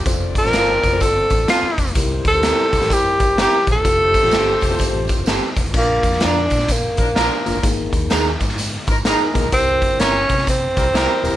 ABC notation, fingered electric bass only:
X:1
M:4/4
L:1/16
Q:"Swing" 1/4=127
K:Bb
V:1 name="Fingered electric bass" clef=bass
F,,,3 A,,, G,,,2 F,,,2 G,,,2 A,,,2 z2 F,,,2 | C,,2 D,,3 z C,, A,,, z2 G,,,3 z B,,, =E,,, | F,,,3 A,,, G,,,2 F,,,2 G,,, A,,, z F,,, G,,, z F,,, G,,, | B,,,2 F,,2 F,,2 B,,4 B,,,2 B,,, z _G,,, =G,,, |
_A,,,2 E,,2 E,,2 _A,,4 A,,,3 z B,,, _C,, | C,,2 G,,,2 G,,,2 C,4 C,,2 C,, z E,,, =E,,, |]